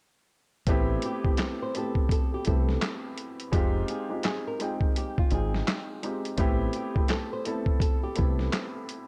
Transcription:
0.67 0.97 A1 medium
0.67 1.11 A3 loud
0.67 1.11 B3 loud
0.67 1.11 C4 loud
0.67 1.12 E4 loud
0.67 1.12 G4 loud
0.67 kick loud
0.67 closed hi-hat medium
1.02 1.41 G4 medium
1.02 closed hi-hat medium
1.23 1.64 A3 medium
1.23 1.65 B3 medium
1.23 1.65 C4 medium
1.23 1.65 E4 medium
1.23 1.66 G4 medium
1.23 kick medium
1.37 1.59 A4 medium
1.37 snare loud
1.37 clap medium
1.37 closed hi-hat medium
1.62 1.74 C5 medium
1.74 2.33 A3 medium
1.74 2.34 B3 medium
1.74 2.34 C4 medium
1.74 2.34 E4 medium
1.74 2.35 G4 medium
1.74 2.08 A4 medium
1.74 closed hi-hat medium
1.95 kick medium
2.09 2.31 A4 medium
2.09 kick medium
2.09 closed hi-hat medium
2.34 2.46 G4 medium
2.45 2.77 C2 medium
2.45 3.32 A3 medium
2.45 3.33 B3 medium
2.45 3.33 C4 medium
2.45 3.33 E4 medium
2.45 3.33 G4 medium
2.45 3.00 A4 medium
2.45 kick medium
2.45 closed hi-hat medium
2.69 snare soft
2.82 snare loud
2.82 clap loud
2.82 closed hi-hat medium
3.18 closed hi-hat medium
3.40 closed hi-hat medium
3.52 3.82 F1 loud
3.52 3.96 G#3 loud
3.52 3.96 C4 loud
3.52 3.96 D#4 medium
3.52 3.97 F4 loud
3.52 3.97 G4 loud
3.52 kick loud
3.52 closed hi-hat medium
3.88 4.22 G#4 medium
3.88 closed hi-hat medium
4.09 4.50 G#3 medium
4.09 4.51 C4 medium
4.09 4.51 D#4 medium
4.09 4.51 F4 medium
4.09 4.51 G4 medium
4.23 4.44 G#4 medium
4.23 snare medium
4.23 clap medium
4.23 closed hi-hat medium
4.47 4.62 A#4 medium
4.59 5.19 G#3 medium
4.59 5.19 C4 medium
4.59 5.19 D#4 medium
4.59 5.20 F4 medium
4.59 4.93 G#4 medium
4.59 5.20 G5 medium
4.59 closed hi-hat medium
4.81 kick medium
4.96 5.16 G4 medium
4.96 closed hi-hat medium
5.18 5.31 F4 medium
5.18 kick medium
5.31 5.61 G#1 loud
5.31 5.90 G#3 medium
5.31 5.91 C4 medium
5.31 5.91 D#4 medium
5.31 5.91 F4 medium
5.31 6.36 G#4 medium
5.31 5.92 G5 medium
5.31 closed hi-hat medium
5.54 snare soft
5.68 snare loud
5.68 clap medium
5.68 closed hi-hat medium
6.02 6.32 G#3 medium
6.02 6.33 C4 medium
6.02 6.33 D#4 medium
6.02 6.33 F4 medium
6.02 6.34 G4 medium
6.02 closed hi-hat medium
6.25 closed hi-hat soft
6.37 6.68 A1 loud
6.37 6.81 A3 loud
6.37 6.82 B3 loud
6.37 6.82 C4 loud
6.37 6.82 E4 loud
6.37 6.83 G4 loud
6.37 kick loud
6.37 closed hi-hat medium
6.73 7.07 G4 medium
6.73 closed hi-hat medium
6.94 7.36 A3 medium
6.94 7.36 B3 medium
6.94 7.37 C4 medium
6.94 7.37 E4 medium
6.94 7.37 G4 medium
6.94 kick medium
7.08 7.30 A4 medium
7.08 snare medium
7.08 clap medium
7.08 closed hi-hat medium
7.33 7.45 C5 medium
7.45 8.04 A3 medium
7.45 8.05 B3 medium
7.45 8.05 C4 medium
7.45 8.06 E4 medium
7.45 7.78 A4 medium
7.45 8.06 A4 medium
7.45 closed hi-hat medium
7.66 kick medium
7.80 8.01 A4 medium
7.80 kick loud
7.80 closed hi-hat loud
8.03 8.17 G4 medium
8.15 8.48 C2 medium
8.15 9.03 A3 medium
8.15 9.03 B3 medium
8.15 9.04 C4 medium
8.15 9.04 E4 medium
8.15 9.04 G4 medium
8.15 8.71 A4 medium
8.15 kick medium
8.15 closed hi-hat medium
8.39 snare soft
8.53 snare loud
8.53 clap medium
8.53 closed hi-hat medium
8.89 closed hi-hat medium

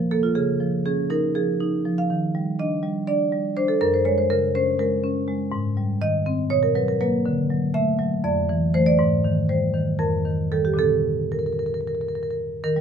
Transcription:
0.00 0.32 A#2 medium
0.00 0.26 F3 medium
0.11 0.36 A#3 soft
0.11 0.23 A4 medium
0.23 0.35 F4 medium
0.35 2.06 C#3 medium
0.35 0.83 G#4 medium
0.60 1.00 F3 soft
0.85 1.25 C#4 soft
0.85 1.09 G#4 medium
1.10 1.50 D#4 medium
1.10 1.34 A#4 medium
1.35 1.75 F3 soft
1.35 1.96 G#4 medium
1.60 2.01 D#4 medium
1.85 2.10 F3 medium
1.98 2.57 F5 medium
2.10 3.77 D#3 medium
2.35 2.74 G3 medium
2.59 2.98 D4 soft
2.59 3.06 D#5 medium
2.83 3.22 G3 medium
3.07 3.47 D4 soft
3.07 3.55 D5 medium
3.32 3.72 G3 medium
3.57 3.81 D4 soft
3.57 3.69 C5 medium
3.68 3.81 A4 medium
3.81 5.48 F#2 medium
3.81 3.93 A#4 medium
3.94 4.06 C5 medium
4.05 4.45 G#3 medium
4.05 4.18 C#5 medium
4.18 4.30 C5 medium
4.30 4.69 C#3 medium
4.30 4.54 A#4 medium
4.55 4.94 C#4 medium
4.55 4.79 C5 medium
4.79 5.18 G#3 medium
4.79 5.38 A#4 medium
5.04 5.43 C#4 medium
5.28 5.52 G#3 medium
5.52 6.47 G#2 medium
5.77 6.16 G3 medium
6.01 6.41 D#3 medium
6.01 6.49 D#5 medium
6.26 6.51 C4 medium
6.50 7.22 B2 medium
6.50 6.63 C#5 medium
6.63 6.75 A#4 medium
6.75 7.00 F#3 medium
6.75 6.88 B4 medium
6.88 7.00 A#4 medium
7.01 7.23 F#3 soft
7.01 7.23 A#3 medium
7.01 7.24 B4 medium
7.25 8.22 D3 medium
7.50 7.90 F#3 medium
7.74 8.14 A3 soft
7.74 8.22 E5 medium
7.99 8.24 F#3 medium
8.24 8.97 F2 medium
8.24 8.72 D5 medium
8.49 8.73 E3 medium
8.74 8.97 E3 medium
8.74 8.97 A3 medium
8.74 8.87 C5 medium
8.86 9.47 D5 medium
8.99 9.97 G#2 medium
9.24 9.65 D#3 medium
9.49 9.90 G3 soft
9.49 9.98 C5 medium
9.74 10.00 D#3 medium
9.99 10.76 F2 medium
9.99 10.50 A#4 medium
10.25 10.51 D#3 soft
10.52 10.76 D#3 soft
10.52 10.76 G3 soft
10.52 10.65 A4 medium
10.65 10.79 G4 medium
10.74 12.57 A#2 medium
10.74 12.58 D3 soft
10.74 12.59 C4 soft
10.79 11.30 A4 medium
11.32 11.39 A#4 medium
11.39 11.46 A#4 soft
11.46 11.53 A#4 soft
11.53 11.59 A#4 soft
11.59 11.66 A#4 soft
11.66 11.74 A#4 soft
11.74 11.81 A#4 soft
11.81 11.87 A#4 soft
11.87 11.95 A#4 soft
11.95 12.01 A#4 soft
12.01 12.09 A#4 soft
12.09 12.15 A#4 soft
12.15 12.23 A#4 soft
12.23 12.30 A#4 soft
12.30 12.34 A#4 soft
12.64 12.81 D#3 medium
12.64 12.81 A#4 medium
12.76 12.81 G3 medium

